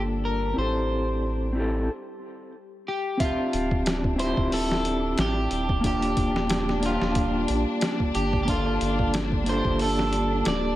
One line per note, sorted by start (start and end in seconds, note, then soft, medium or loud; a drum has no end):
0.00 0.54 G1 medium
0.00 1.89 G3 medium
0.00 0.51 A#3 medium
0.00 0.53 D4 medium
0.00 1.89 D4 medium
0.00 0.54 F4 medium
0.00 1.89 G4 medium
0.00 0.55 A4 loud
0.25 0.58 A#4 medium
0.54 1.89 A1 medium
0.54 1.51 C4 medium
0.54 1.52 E4 medium
0.58 1.53 G4 medium
0.58 1.54 A4 medium
0.58 2.51 C5 medium
1.53 1.87 C4 medium
1.53 1.88 E4 medium
1.57 1.89 G4 medium
1.57 1.91 A4 loud
2.88 3.20 G4 loud
3.17 10.76 G3 medium
3.17 4.14 C4 medium
3.17 10.76 D4 medium
3.17 3.83 F4 medium
3.17 10.76 G4 medium
3.17 4.16 E5 medium
3.17 kick loud
3.17 closed hi-hat medium
3.22 4.17 F4 medium
3.22 4.18 G4 medium
3.53 4.34 D1 loud
3.53 closed hi-hat medium
3.71 kick medium
3.86 snare loud
3.86 closed hi-hat medium
4.04 kick medium
4.16 5.79 C4 medium
4.16 5.80 E4 medium
4.16 4.53 C5 medium
4.16 closed hi-hat medium
4.21 5.81 F4 medium
4.21 5.83 G4 loud
4.37 5.15 D1 medium
4.37 kick medium
4.52 5.20 A4 loud
4.52 open hi-hat medium
4.71 snare medium
4.85 closed hi-hat medium
5.18 5.48 A1 medium
5.18 5.85 G4 loud
5.18 snare loud
5.18 closed hi-hat medium
5.51 6.14 D#1 medium
5.51 closed hi-hat medium
5.69 kick loud
5.80 6.78 A#3 medium
5.80 6.79 D4 medium
5.80 kick loud
5.80 closed hi-hat medium
5.85 6.80 F4 medium
5.85 6.85 G4 loud
5.85 6.81 G4 medium
6.03 closed hi-hat soft
6.17 6.98 D#1 loud
6.17 kick loud
6.17 closed hi-hat medium
6.36 snare medium
6.50 snare loud
6.50 closed hi-hat medium
6.69 snare soft
6.80 8.43 A#3 loud
6.80 8.44 D4 medium
6.80 closed hi-hat medium
6.85 8.45 F4 medium
6.85 7.46 F4 medium
6.85 8.46 G4 loud
7.02 7.46 D#1 medium
7.02 snare medium
7.15 kick loud
7.15 closed hi-hat medium
7.48 7.65 A#1 medium
7.48 closed hi-hat medium
7.81 snare loud
7.81 closed hi-hat medium
8.00 kick medium
8.15 8.78 G1 medium
8.15 8.40 G4 loud
8.15 closed hi-hat medium
8.33 kick loud
8.43 9.42 A#3 medium
8.43 9.43 D4 medium
8.43 8.49 G4 medium
8.48 9.11 F4 loud
8.48 9.44 F4 medium
8.48 kick loud
8.48 closed hi-hat medium
8.52 9.45 A4 medium
8.81 9.62 G1 loud
8.81 closed hi-hat medium
8.99 kick medium
9.14 snare loud
9.14 closed hi-hat medium
9.32 kick medium
9.44 10.76 A#3 loud
9.44 10.76 D4 medium
9.44 closed hi-hat medium
9.48 10.76 F4 medium
9.48 10.76 A4 loud
9.48 9.82 C5 medium
9.65 10.43 G1 medium
9.65 kick loud
9.79 10.47 A4 loud
9.79 open hi-hat medium
9.99 snare medium
10.13 closed hi-hat medium
10.45 10.75 D1 loud
10.45 10.76 D5 loud
10.45 snare loud
10.45 closed hi-hat medium